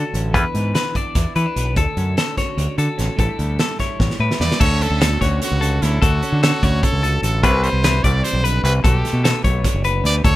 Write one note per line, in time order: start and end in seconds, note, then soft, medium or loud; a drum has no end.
0.00 0.34 D2 medium
0.00 1.16 D3 medium
0.00 0.15 C#4 soft
0.00 0.33 F#4 soft
0.00 0.33 A4 medium
0.00 0.35 A4 medium
0.14 0.34 A1 medium
0.14 0.33 C#4 medium
0.14 closed hi-hat medium
0.34 0.43 E2 medium
0.34 1.75 E2 medium
0.34 0.74 B4 medium
0.34 kick medium
0.34 closed hi-hat medium
0.54 0.72 G#2 medium
0.54 1.35 B3 soft
0.54 closed hi-hat medium
0.75 1.75 A4 medium
0.75 0.96 B4 medium
0.75 snare medium
0.75 closed hi-hat medium
0.95 1.36 D4 medium
0.95 1.36 D5 medium
0.95 kick medium
0.95 closed hi-hat medium
1.15 1.24 E2 medium
1.15 1.81 E3 medium
1.15 kick medium
1.15 snare soft
1.15 closed hi-hat medium
1.36 1.45 E3 medium
1.36 1.46 B3 medium
1.36 1.77 B4 medium
1.36 closed hi-hat medium
1.46 1.77 D4 soft
1.56 1.76 B1 medium
1.56 1.75 B3 medium
1.56 closed hi-hat medium
1.76 1.85 D2 medium
1.76 3.19 D2 medium
1.76 2.17 A4 medium
1.76 kick loud
1.76 closed hi-hat medium
1.97 2.15 F#2 medium
1.97 2.96 C#4 soft
1.97 closed hi-hat medium
2.17 2.38 A4 medium
2.17 3.19 A4 medium
2.17 snare medium
2.17 closed hi-hat medium
2.37 2.77 F#4 medium
2.37 2.78 C#5 medium
2.37 kick medium
2.37 snare soft
2.37 closed hi-hat medium
2.57 2.67 D2 medium
2.57 3.15 D3 medium
2.57 closed hi-hat medium
2.78 2.87 D3 medium
2.78 3.16 F#4 medium
2.78 3.18 A4 medium
2.78 closed hi-hat medium
2.98 3.08 A1 medium
2.98 3.16 C#4 medium
2.98 snare soft
2.98 closed hi-hat soft
3.16 3.27 A1 medium
3.16 3.99 A2 medium
3.16 3.99 D3 medium
3.16 3.37 G3 medium
3.16 3.78 E4 medium
3.16 3.58 A4 medium
3.16 3.59 A4 medium
3.16 kick medium
3.16 closed hi-hat medium
3.38 3.57 D2 medium
3.38 4.39 G3 soft
3.38 closed hi-hat soft
3.59 4.58 A4 medium
3.59 3.80 A4 medium
3.59 snare medium
3.59 closed hi-hat medium
3.79 4.19 E4 medium
3.79 4.20 C#5 medium
3.79 kick medium
3.79 snare soft
3.79 closed hi-hat soft
4.00 4.09 A1 medium
4.00 kick medium
4.00 snare soft
4.11 snare soft
4.19 4.29 A2 medium
4.19 4.58 E4 medium
4.19 4.60 B4 medium
4.31 snare medium
4.40 4.49 E2 medium
4.40 4.61 G3 medium
4.40 4.63 D5 medium
4.40 snare medium
4.52 snare medium
4.59 6.00 D2 medium
4.59 4.87 D2 loud
4.59 5.00 A4 medium
4.59 4.84 C#5 loud
4.59 kick loud
4.59 crash loud
4.81 5.22 C#4 medium
4.81 5.24 A4 loud
4.81 closed hi-hat medium
4.90 5.17 D2 medium
5.01 6.00 F#4 medium
5.01 5.21 A4 medium
5.01 snare loud
5.01 closed hi-hat medium
5.21 5.39 D2 medium
5.21 5.61 C#4 medium
5.21 5.42 F#4 medium
5.21 5.61 C#5 medium
5.21 kick medium
5.21 snare soft
5.21 closed hi-hat medium
5.42 5.84 F#4 medium
5.42 snare soft
5.42 closed hi-hat medium
5.52 5.78 C#2 medium
5.61 5.82 C#4 medium
5.61 6.00 A4 medium
5.61 closed hi-hat medium
5.82 6.00 D2 medium
5.82 6.00 C#4 medium
5.82 6.04 E4 medium
5.82 snare soft
5.82 closed hi-hat medium
6.02 7.43 D2 medium
6.02 6.20 D2 medium
6.02 6.43 F#4 medium
6.02 6.42 A4 medium
6.02 kick loud
6.02 closed hi-hat medium
6.23 6.42 C#4 medium
6.23 closed hi-hat medium
6.32 6.50 D3 medium
6.43 6.62 C#4 medium
6.43 6.85 F#4 medium
6.43 6.63 A4 medium
6.43 snare loud
6.43 closed hi-hat medium
6.63 6.80 D2 medium
6.63 7.41 C#4 medium
6.63 7.03 C#5 medium
6.63 kick medium
6.63 closed hi-hat medium
6.83 7.23 A4 loud
6.83 kick medium
6.83 closed hi-hat medium
6.92 7.19 C#2 medium
7.03 7.22 F#4 medium
7.03 7.43 A4 medium
7.03 closed hi-hat medium
7.22 7.43 A1 medium
7.22 7.41 F#4 medium
7.22 7.45 A4 medium
7.22 closed hi-hat medium
7.43 7.70 C2 medium
7.43 8.63 C3 medium
7.43 7.65 B4 medium
7.43 7.83 B4 medium
7.43 kick loud
7.43 closed hi-hat medium
7.64 8.04 G3 medium
7.64 8.05 C5 medium
7.64 closed hi-hat medium
7.73 8.00 C2 medium
7.83 8.84 E4 medium
7.83 8.04 B4 medium
7.83 snare medium
7.83 closed hi-hat medium
8.04 8.22 C2 medium
8.04 9.04 G3 medium
8.04 8.26 D5 medium
8.04 8.43 D5 medium
8.04 kick medium
8.04 closed hi-hat medium
8.24 8.43 E3 medium
8.24 8.47 C5 medium
8.24 closed hi-hat loud
8.33 8.60 B1 medium
8.43 8.64 D3 medium
8.43 8.83 B4 medium
8.43 8.64 B4 medium
8.43 closed hi-hat medium
8.63 8.81 C2 loud
8.63 8.84 C3 medium
8.63 8.74 B4 medium
8.63 closed hi-hat medium
8.84 9.02 B1 medium
8.84 9.64 B2 medium
8.84 9.27 G4 medium
8.84 9.23 A4 medium
8.84 kick loud
8.84 closed hi-hat medium
9.04 9.46 A3 medium
9.04 snare soft
9.04 closed hi-hat medium
9.13 9.31 B2 medium
9.24 9.84 B3 medium
9.24 9.44 A4 medium
9.24 snare loud
9.24 closed hi-hat medium
9.44 9.62 B1 medium
9.44 10.36 A3 medium
9.44 9.84 C#5 medium
9.44 kick medium
9.44 closed hi-hat medium
9.64 10.36 D3 medium
9.64 kick medium
9.64 snare soft
9.64 closed hi-hat medium
9.74 10.01 F#1 medium
9.84 10.25 B3 medium
9.84 10.24 B4 medium
9.84 closed hi-hat medium
10.04 10.22 D2 medium
10.04 10.23 G4 medium
10.04 10.15 D5 loud
10.04 snare soft
10.04 closed hi-hat medium
10.24 10.36 D2 medium
10.24 10.36 A4 medium
10.24 10.36 C#5 loud
10.24 kick loud
10.24 closed hi-hat medium